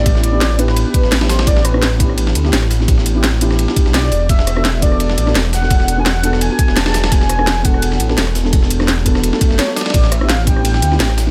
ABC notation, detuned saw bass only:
X:1
M:4/4
L:1/16
Q:"Swing 16ths" 1/4=170
K:Ephr
V:1 name="Detuned saw bass" clef=bass
A,,,8- A,,, z2 A,,,4- A,,, | A,,,8- A,,,2 D,,2 A,,,4- | A,,,8- A,,, z2 B,,,3 E,,,2 | E,,,8- E,,,2 A,,,2 E,,,4- |
E,,,8- E,,, z2 E,,,4- E,,, | E,,,8- E,,,2 A,,,2 E,,,4- | E,,,8- E,,, z2 ^F,,, z4 | A,,,8- A,,,2 D,,2 A,,,4 |]